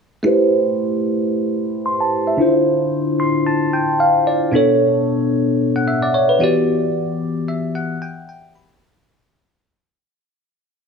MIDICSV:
0, 0, Header, 1, 2, 480
1, 0, Start_track
1, 0, Tempo, 535714
1, 224, Time_signature, 4, 2, 24, 8
1, 9742, End_track
2, 0, Start_track
2, 0, Title_t, "Tine electric piano"
2, 0, Program_c, 0, 4
2, 205, Note_on_c, 0, 57, 71
2, 216, Note_on_c, 0, 64, 66
2, 226, Note_on_c, 0, 67, 65
2, 237, Note_on_c, 0, 71, 66
2, 249, Note_on_c, 0, 72, 76
2, 379, Control_c, 0, 64, 127
2, 1664, Note_on_c, 0, 84, 62
2, 1789, Note_off_c, 0, 84, 0
2, 1797, Note_on_c, 0, 81, 67
2, 2024, Note_off_c, 0, 81, 0
2, 2037, Note_on_c, 0, 76, 65
2, 2098, Note_off_c, 0, 57, 0
2, 2104, Note_off_c, 0, 64, 0
2, 2109, Note_off_c, 0, 67, 0
2, 2115, Note_off_c, 0, 71, 0
2, 2120, Note_off_c, 0, 72, 0
2, 2124, Note_on_c, 0, 50, 69
2, 2134, Note_on_c, 0, 62, 65
2, 2144, Note_on_c, 0, 64, 66
2, 2156, Note_on_c, 0, 65, 65
2, 2157, Control_c, 0, 64, 0
2, 2167, Note_on_c, 0, 72, 76
2, 2264, Note_off_c, 0, 76, 0
2, 2327, Control_c, 0, 64, 127
2, 2865, Note_on_c, 0, 84, 69
2, 3087, Note_off_c, 0, 84, 0
2, 3104, Note_on_c, 0, 81, 73
2, 3327, Note_off_c, 0, 81, 0
2, 3346, Note_on_c, 0, 79, 71
2, 3568, Note_off_c, 0, 79, 0
2, 3585, Note_on_c, 0, 77, 68
2, 3807, Note_off_c, 0, 77, 0
2, 3827, Note_on_c, 0, 74, 68
2, 4018, Note_off_c, 0, 50, 0
2, 4023, Note_off_c, 0, 62, 0
2, 4028, Note_off_c, 0, 64, 0
2, 4034, Note_off_c, 0, 65, 0
2, 4039, Note_off_c, 0, 72, 0
2, 4045, Note_on_c, 0, 47, 72
2, 4049, Note_off_c, 0, 74, 0
2, 4056, Note_on_c, 0, 59, 69
2, 4066, Note_on_c, 0, 62, 69
2, 4075, Control_c, 0, 64, 0
2, 4077, Note_on_c, 0, 69, 65
2, 4088, Note_on_c, 0, 73, 79
2, 4223, Control_c, 0, 64, 127
2, 5017, Note_off_c, 0, 73, 0
2, 5160, Note_on_c, 0, 78, 59
2, 5260, Note_off_c, 0, 78, 0
2, 5265, Note_on_c, 0, 76, 65
2, 5390, Note_off_c, 0, 76, 0
2, 5398, Note_on_c, 0, 74, 72
2, 5500, Note_off_c, 0, 74, 0
2, 5504, Note_on_c, 0, 73, 68
2, 5629, Note_off_c, 0, 73, 0
2, 5637, Note_on_c, 0, 71, 61
2, 5701, Note_off_c, 0, 47, 0
2, 5706, Note_off_c, 0, 59, 0
2, 5711, Note_off_c, 0, 62, 0
2, 5717, Note_off_c, 0, 69, 0
2, 5725, Note_on_c, 0, 52, 72
2, 5735, Note_on_c, 0, 59, 66
2, 5746, Note_on_c, 0, 66, 64
2, 5756, Control_c, 0, 64, 0
2, 5757, Note_on_c, 0, 67, 65
2, 5767, Note_on_c, 0, 74, 74
2, 5864, Note_off_c, 0, 71, 0
2, 5896, Control_c, 0, 64, 127
2, 6706, Note_on_c, 0, 76, 72
2, 6928, Note_off_c, 0, 76, 0
2, 6946, Note_on_c, 0, 78, 72
2, 7168, Note_off_c, 0, 78, 0
2, 7185, Note_on_c, 0, 79, 72
2, 7407, Note_off_c, 0, 79, 0
2, 7426, Note_on_c, 0, 79, 73
2, 7618, Note_off_c, 0, 52, 0
2, 7623, Note_off_c, 0, 59, 0
2, 7629, Note_off_c, 0, 66, 0
2, 7634, Note_off_c, 0, 67, 0
2, 7640, Note_off_c, 0, 74, 0
2, 7648, Note_off_c, 0, 79, 0
2, 7665, Note_on_c, 0, 83, 68
2, 7887, Note_off_c, 0, 83, 0
2, 7913, Control_c, 0, 64, 0
2, 9742, End_track
0, 0, End_of_file